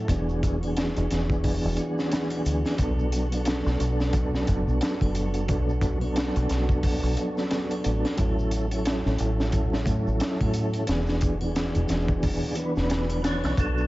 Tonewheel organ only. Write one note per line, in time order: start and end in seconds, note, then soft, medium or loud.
0.08 0.57 E3 medium
0.08 0.58 B3 medium
0.08 0.58 D4 medium
0.12 0.59 G#4 medium
0.59 2.74 E3 medium
0.59 2.75 B3 medium
0.64 2.76 D4 medium
0.64 2.78 G#4 medium
2.77 3.27 F#3 medium
2.77 3.27 B3 medium
2.77 3.28 D4 medium
2.81 3.29 A4 medium
3.28 5.43 F#3 medium
3.28 5.45 B3 medium
3.34 5.46 D4 medium
3.34 5.47 A4 medium
5.47 5.96 F#3 medium
5.47 5.97 B3 medium
5.47 5.98 D4 medium
5.51 5.99 A4 medium
5.98 8.13 F#3 medium
5.98 8.14 B3 medium
6.04 8.16 D4 medium
6.04 8.17 A4 medium
8.16 8.66 F#3 medium
8.16 8.67 C#4 medium
8.16 8.67 E4 medium
8.20 8.68 A4 medium
8.68 10.83 F#3 medium
8.68 10.84 C#4 medium
8.73 10.86 E4 medium
8.73 10.87 A4 medium
10.86 11.36 E3 medium
10.86 11.37 B3 medium
10.86 11.37 D4 medium
10.91 11.38 G#4 medium
11.37 12.52 E3 medium
11.37 12.53 B3 medium
11.43 12.55 D4 medium
11.43 12.56 G#4 medium
12.55 13.20 E3 medium
12.55 13.20 B3 medium
12.55 13.21 D4 medium
12.59 13.22 B4 loud
13.22 13.53 E3 medium
13.22 13.54 B3 medium
13.22 13.55 D4 medium
13.26 13.55 C#5 medium
13.56 13.87 F#3 medium
13.56 13.87 B3 medium
13.56 13.87 D4 medium
13.60 13.87 A4 medium